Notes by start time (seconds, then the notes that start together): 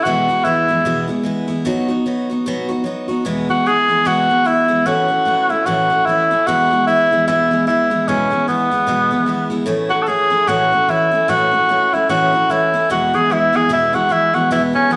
0.03 E2 B2 E3 G#3 B3 E4 F#4
0.28 E3 G#3 B3 E4
0.44 E3 G#3 B3 E4
0.68 E3 G#3 B3 E4
0.85 E2 B2 E3 G#3 B3 E4
1.08 E3 G#3 B3 E4
1.23 E3 G#3 B3 E4
1.48 E3 G#3 B3 E4
1.65 B2 F#3 B3 D#4 F#4
1.88 B3 D#4 F#4
2.06 F#3 B3 D#4 F#4
2.30 B3 D#4 F#4
2.46 B2 F#3 B3 D#4 F#4
2.69 B3 D#4 F#4
2.84 F#3 B3 D#4 F#4
3.08 B3 D#4 F#4
3.25 E2 B2 E3 G#3 B3 E4
3.49 E3 G#3 B3 E4 F#4
3.66 E3 G#3 B3 E4 G#4
3.88 E3 G#3 B3 E4
4.05 E2 B2 E3 G#3 B3 E4 F#4
4.29 E3 G#3 B3 E4
4.44 E3 G#3 B3 E4
4.68 E3 G#3 B3 E4
4.86 A2 E3 A3 C#4 E4 F#4
5.08 A3 C#4 E4
5.25 E3 A3 C#4 E4
5.49 A3 C#4 E4
5.66 A2 E3 A3 C#4 E4 F#4
5.90 A3 C#4 E4
6.05 E3 A3 C#4 E4
6.10 E4
6.31 A3 C#4 E4
6.47 E2 B2 E3 G#3 B3 E4 F#4
6.71 E3 G#3 B3 E4
6.87 E3 G#3 B3 E4
7.11 E3 G#3 B3 E4
7.27 E2 B2 E3 G#3 B3 E4
7.51 E3 G#3 B3 E4
7.67 E3 G#3 B3 E4
7.90 E3 G#3 B3 E4
8.08 E2 B2 E3 G#3 B3 C#4 E4
8.30 E3 G#3 B3 E4
8.48 E3 G#3 B3 E4
8.71 E3 G#3 B3 E4
8.87 E2 B2 E3 G#3 B3 E4
9.11 E3 G#3 B3 E4
9.26 E3 G#3 B3 E4
9.50 E3 G#3 B3 E4
9.66 A2 E3 A3 C#4 E4
9.89 A3 C#4 E4 F#4
10.03 E3 A4
10.07 A3 C#4 E4 G#4
10.30 A3 C#4 E4
10.47 A2 E3 A3 C#4 E4 F#4
10.72 A3 C#4 E4
10.88 E3 A3 C#4 E4
11.12 A3 C#4 E4
11.28 A2 E3 A3 C#4 E4 F#4
11.51 A3 C#4 E4
11.69 E3 A3 C#4 E4
11.93 A3 C#4 E4
12.09 A2 E3 A3 C#4 E4 F#4
12.32 A3 C#4 E4
12.50 E3 A3 C#4 E4
12.74 A3 C#4 E4
12.90 E2 B2 E3 G#3 B3 E4 F#4
13.14 E3 G#3 B3 E4 G#4
13.30 E3 G#3 B3 E4
13.53 E3 G#3 B3 E4 G#4
13.69 E2 B2 E3 G#3 B3 E4
13.93 E3 G#3 B3 E4 F#4
14.09 E3 G#3 B3 E4
14.33 E3 G#3 B3 E4 F#4
14.51 E2 B2 E3 G#3 B3 E4
14.73 G#3 B3 C#4 E4
14.90 E3 G#3 B3 E4